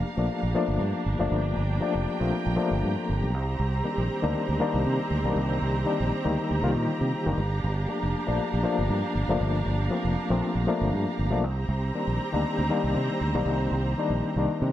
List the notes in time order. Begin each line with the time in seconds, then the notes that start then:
Already playing: F3 A3 A#3 D4 G4 F5 A#5
0.17 A#1 F3 A3 A#3 D4
0.43 A#1
0.54 F3 A3 A#3 D4
0.68 G1
0.80 G2
1.06 G1
1.19 F#1 F3 A3 A#3 D4
1.31 G1 G5
1.57 G1
1.81 F3 A3 A#3 D4
1.95 F1
2.20 A#1 F3 A3 A#3 C4
2.47 A#1
2.56 F3 A3 A#3 D4
2.71 G1
2.84 G2
2.96 A4 C5
3.08 G1 G4 A#4
3.22 B1 G4
3.33 C2 C4 C5
3.60 C2
3.84 D#3 G3 A#3 D4
3.98 A#1
4.22 D2 D#3 G3 A#3 D4
4.49 D2
4.60 D#3 G3 A#3 D4
4.74 C2
4.86 C3
5.11 D2
5.24 B1 D3 G3 A#3 D4
5.30 D#3
5.36 C2
5.62 C2
5.85 D#3 G3 A#3 D4
6.00 A#1
6.25 D2 D#3 G3 A#3 D#4
6.51 D2
6.63 C2 D3 G3 A#3 F4
6.69 D#3
6.76 A#2
7.01 C3
7.27 F#1 D#3 G3 A#3 D4
7.38 G1 D4 F5
7.64 G1
7.88 F3 A3 A#3 D4
8.03 F1
8.27 A#1 F3 A3 A#3 D4
8.54 A#1
8.63 F3 A3 A#3 D4
8.79 G1
8.90 G2
9.15 G1
9.28 F#1 F3 A3 A#3 D4
9.41 G1
9.66 G1
9.91 F3 A3 A#3 C4
10.05 F1
10.30 A#1 F3 A3 A#3 C4
10.55 A#1
10.67 F3 A3 A#3 D4
10.81 G1
10.93 G2
11.19 G1
11.31 B1 F3 A3 A#3 D4
11.42 C2 C4 G4 C5 A#5
11.69 C2
11.94 D#3 G3 A#3 D4
12.08 A#1
12.33 D2 D#3 G3 A#3 D4
12.59 D2
12.70 D#3 G3 A#3 D4
12.84 C2
12.96 C3
13.21 D2
13.35 B1 D#3 G3 A#3 D4
13.46 C2
13.72 C2
13.98 D#3 G3 A#3 D4
14.10 A#1
14.36 C2 D#3 G3 A#3 D4
14.62 C3